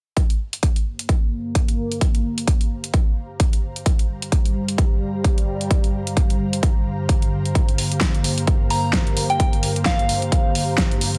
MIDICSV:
0, 0, Header, 1, 5, 480
1, 0, Start_track
1, 0, Key_signature, -2, "minor"
1, 0, Tempo, 461538
1, 174, Time_signature, 4, 2, 24, 8
1, 11628, End_track
2, 0, Start_track
2, 0, Title_t, "Synth bell"
2, 0, Program_c, 0, 98
2, 9054, Note_on_c, 0, 82, 82
2, 9268, Note_off_c, 0, 82, 0
2, 9671, Note_on_c, 0, 79, 87
2, 9737, Note_off_c, 0, 79, 0
2, 9772, Note_on_c, 0, 79, 72
2, 9861, Note_off_c, 0, 79, 0
2, 10254, Note_on_c, 0, 77, 89
2, 10933, Note_off_c, 0, 77, 0
2, 11628, End_track
3, 0, Start_track
3, 0, Title_t, "Ambient pad"
3, 0, Program_c, 1, 92
3, 174, Note_on_c, 1, 67, 83
3, 496, Note_on_c, 1, 72, 88
3, 598, Note_on_c, 1, 82, 78
3, 799, Note_on_c, 1, 77, 78
3, 11628, Note_off_c, 1, 67, 0
3, 11628, Note_off_c, 1, 72, 0
3, 11628, Note_off_c, 1, 77, 0
3, 11628, Note_off_c, 1, 82, 0
3, 11628, End_track
4, 0, Start_track
4, 0, Title_t, "Analog synth pad"
4, 0, Program_c, 2, 89
4, 175, Note_on_c, 2, 50, 76
4, 176, Note_on_c, 2, 43, 80
4, 176, Note_on_c, 2, 58, 91
4, 4004, Note_off_c, 2, 58, 0
4, 4015, Note_on_c, 2, 55, 90
4, 7843, Note_off_c, 2, 55, 0
4, 7855, Note_on_c, 2, 58, 91
4, 11628, Note_off_c, 2, 43, 0
4, 11628, Note_off_c, 2, 50, 0
4, 11628, Note_off_c, 2, 58, 0
4, 11628, End_track
5, 0, Start_track
5, 0, Title_t, "Drums"
5, 173, Note_on_c, 9, 36, 112
5, 174, Note_on_c, 9, 42, 81
5, 277, Note_off_c, 9, 36, 0
5, 278, Note_off_c, 9, 42, 0
5, 312, Note_on_c, 9, 42, 37
5, 416, Note_off_c, 9, 42, 0
5, 552, Note_on_c, 9, 42, 50
5, 653, Note_off_c, 9, 42, 0
5, 653, Note_on_c, 9, 36, 99
5, 653, Note_on_c, 9, 42, 80
5, 757, Note_off_c, 9, 36, 0
5, 757, Note_off_c, 9, 42, 0
5, 792, Note_on_c, 9, 42, 36
5, 896, Note_off_c, 9, 42, 0
5, 1032, Note_on_c, 9, 42, 53
5, 1133, Note_off_c, 9, 42, 0
5, 1133, Note_on_c, 9, 36, 109
5, 1133, Note_on_c, 9, 42, 75
5, 1237, Note_off_c, 9, 36, 0
5, 1237, Note_off_c, 9, 42, 0
5, 1613, Note_on_c, 9, 36, 95
5, 1614, Note_on_c, 9, 42, 77
5, 1717, Note_off_c, 9, 36, 0
5, 1718, Note_off_c, 9, 42, 0
5, 1752, Note_on_c, 9, 42, 36
5, 1856, Note_off_c, 9, 42, 0
5, 1992, Note_on_c, 9, 42, 37
5, 2093, Note_off_c, 9, 42, 0
5, 2093, Note_on_c, 9, 36, 118
5, 2093, Note_on_c, 9, 42, 79
5, 2197, Note_off_c, 9, 36, 0
5, 2197, Note_off_c, 9, 42, 0
5, 2232, Note_on_c, 9, 42, 35
5, 2336, Note_off_c, 9, 42, 0
5, 2472, Note_on_c, 9, 42, 51
5, 2574, Note_off_c, 9, 42, 0
5, 2574, Note_on_c, 9, 36, 102
5, 2574, Note_on_c, 9, 42, 77
5, 2678, Note_off_c, 9, 36, 0
5, 2678, Note_off_c, 9, 42, 0
5, 2712, Note_on_c, 9, 42, 35
5, 2816, Note_off_c, 9, 42, 0
5, 2951, Note_on_c, 9, 42, 50
5, 3053, Note_off_c, 9, 42, 0
5, 3053, Note_on_c, 9, 42, 75
5, 3054, Note_on_c, 9, 36, 119
5, 3157, Note_off_c, 9, 42, 0
5, 3158, Note_off_c, 9, 36, 0
5, 3534, Note_on_c, 9, 36, 102
5, 3534, Note_on_c, 9, 42, 74
5, 3638, Note_off_c, 9, 36, 0
5, 3638, Note_off_c, 9, 42, 0
5, 3672, Note_on_c, 9, 42, 36
5, 3776, Note_off_c, 9, 42, 0
5, 3912, Note_on_c, 9, 42, 36
5, 4014, Note_off_c, 9, 42, 0
5, 4014, Note_on_c, 9, 36, 117
5, 4014, Note_on_c, 9, 42, 75
5, 4118, Note_off_c, 9, 36, 0
5, 4118, Note_off_c, 9, 42, 0
5, 4152, Note_on_c, 9, 42, 35
5, 4256, Note_off_c, 9, 42, 0
5, 4392, Note_on_c, 9, 42, 47
5, 4494, Note_off_c, 9, 42, 0
5, 4494, Note_on_c, 9, 36, 106
5, 4494, Note_on_c, 9, 42, 76
5, 4598, Note_off_c, 9, 36, 0
5, 4598, Note_off_c, 9, 42, 0
5, 4633, Note_on_c, 9, 42, 33
5, 4737, Note_off_c, 9, 42, 0
5, 4872, Note_on_c, 9, 42, 50
5, 4974, Note_on_c, 9, 36, 116
5, 4975, Note_off_c, 9, 42, 0
5, 4975, Note_on_c, 9, 42, 73
5, 5078, Note_off_c, 9, 36, 0
5, 5079, Note_off_c, 9, 42, 0
5, 5454, Note_on_c, 9, 36, 102
5, 5455, Note_on_c, 9, 42, 74
5, 5558, Note_off_c, 9, 36, 0
5, 5559, Note_off_c, 9, 42, 0
5, 5593, Note_on_c, 9, 42, 34
5, 5697, Note_off_c, 9, 42, 0
5, 5833, Note_on_c, 9, 42, 34
5, 5934, Note_on_c, 9, 36, 117
5, 5935, Note_off_c, 9, 42, 0
5, 5935, Note_on_c, 9, 42, 76
5, 6038, Note_off_c, 9, 36, 0
5, 6039, Note_off_c, 9, 42, 0
5, 6073, Note_on_c, 9, 42, 33
5, 6177, Note_off_c, 9, 42, 0
5, 6313, Note_on_c, 9, 42, 47
5, 6414, Note_off_c, 9, 42, 0
5, 6414, Note_on_c, 9, 36, 101
5, 6414, Note_on_c, 9, 42, 71
5, 6518, Note_off_c, 9, 36, 0
5, 6518, Note_off_c, 9, 42, 0
5, 6553, Note_on_c, 9, 42, 33
5, 6657, Note_off_c, 9, 42, 0
5, 6793, Note_on_c, 9, 42, 47
5, 6894, Note_off_c, 9, 42, 0
5, 6894, Note_on_c, 9, 36, 116
5, 6894, Note_on_c, 9, 42, 72
5, 6998, Note_off_c, 9, 36, 0
5, 6998, Note_off_c, 9, 42, 0
5, 7374, Note_on_c, 9, 36, 105
5, 7374, Note_on_c, 9, 42, 71
5, 7478, Note_off_c, 9, 36, 0
5, 7478, Note_off_c, 9, 42, 0
5, 7511, Note_on_c, 9, 42, 33
5, 7615, Note_off_c, 9, 42, 0
5, 7753, Note_on_c, 9, 42, 34
5, 7854, Note_on_c, 9, 36, 109
5, 7855, Note_off_c, 9, 42, 0
5, 7855, Note_on_c, 9, 42, 74
5, 7958, Note_off_c, 9, 36, 0
5, 7959, Note_off_c, 9, 42, 0
5, 7993, Note_on_c, 9, 42, 34
5, 8095, Note_on_c, 9, 46, 101
5, 8097, Note_off_c, 9, 42, 0
5, 8199, Note_off_c, 9, 46, 0
5, 8232, Note_on_c, 9, 42, 47
5, 8328, Note_on_c, 9, 38, 109
5, 8333, Note_off_c, 9, 42, 0
5, 8333, Note_on_c, 9, 42, 72
5, 8334, Note_on_c, 9, 36, 98
5, 8432, Note_off_c, 9, 38, 0
5, 8437, Note_off_c, 9, 42, 0
5, 8438, Note_off_c, 9, 36, 0
5, 8471, Note_on_c, 9, 42, 33
5, 8573, Note_on_c, 9, 46, 100
5, 8575, Note_off_c, 9, 42, 0
5, 8677, Note_off_c, 9, 46, 0
5, 8711, Note_on_c, 9, 42, 49
5, 8812, Note_off_c, 9, 42, 0
5, 8812, Note_on_c, 9, 42, 71
5, 8813, Note_on_c, 9, 36, 115
5, 8916, Note_off_c, 9, 42, 0
5, 8917, Note_off_c, 9, 36, 0
5, 9052, Note_on_c, 9, 46, 97
5, 9156, Note_off_c, 9, 46, 0
5, 9288, Note_on_c, 9, 38, 109
5, 9293, Note_on_c, 9, 36, 98
5, 9293, Note_on_c, 9, 42, 72
5, 9392, Note_off_c, 9, 38, 0
5, 9397, Note_off_c, 9, 36, 0
5, 9397, Note_off_c, 9, 42, 0
5, 9431, Note_on_c, 9, 42, 33
5, 9533, Note_on_c, 9, 46, 104
5, 9535, Note_off_c, 9, 42, 0
5, 9637, Note_off_c, 9, 46, 0
5, 9671, Note_on_c, 9, 42, 34
5, 9773, Note_on_c, 9, 36, 109
5, 9774, Note_off_c, 9, 42, 0
5, 9774, Note_on_c, 9, 42, 78
5, 9877, Note_off_c, 9, 36, 0
5, 9878, Note_off_c, 9, 42, 0
5, 9912, Note_on_c, 9, 42, 36
5, 10014, Note_on_c, 9, 46, 102
5, 10016, Note_off_c, 9, 42, 0
5, 10118, Note_off_c, 9, 46, 0
5, 10152, Note_on_c, 9, 42, 49
5, 10249, Note_on_c, 9, 38, 111
5, 10253, Note_on_c, 9, 36, 99
5, 10254, Note_off_c, 9, 42, 0
5, 10254, Note_on_c, 9, 42, 76
5, 10353, Note_off_c, 9, 38, 0
5, 10357, Note_off_c, 9, 36, 0
5, 10358, Note_off_c, 9, 42, 0
5, 10392, Note_on_c, 9, 42, 36
5, 10494, Note_on_c, 9, 46, 99
5, 10496, Note_off_c, 9, 42, 0
5, 10598, Note_off_c, 9, 46, 0
5, 10631, Note_on_c, 9, 42, 52
5, 10733, Note_on_c, 9, 36, 111
5, 10734, Note_off_c, 9, 42, 0
5, 10734, Note_on_c, 9, 42, 77
5, 10837, Note_off_c, 9, 36, 0
5, 10838, Note_off_c, 9, 42, 0
5, 10974, Note_on_c, 9, 46, 96
5, 11078, Note_off_c, 9, 46, 0
5, 11208, Note_on_c, 9, 38, 108
5, 11213, Note_on_c, 9, 36, 96
5, 11214, Note_on_c, 9, 42, 76
5, 11312, Note_off_c, 9, 38, 0
5, 11317, Note_off_c, 9, 36, 0
5, 11318, Note_off_c, 9, 42, 0
5, 11351, Note_on_c, 9, 42, 35
5, 11453, Note_on_c, 9, 46, 100
5, 11455, Note_off_c, 9, 42, 0
5, 11557, Note_off_c, 9, 46, 0
5, 11591, Note_on_c, 9, 42, 35
5, 11628, Note_off_c, 9, 42, 0
5, 11628, End_track
0, 0, End_of_file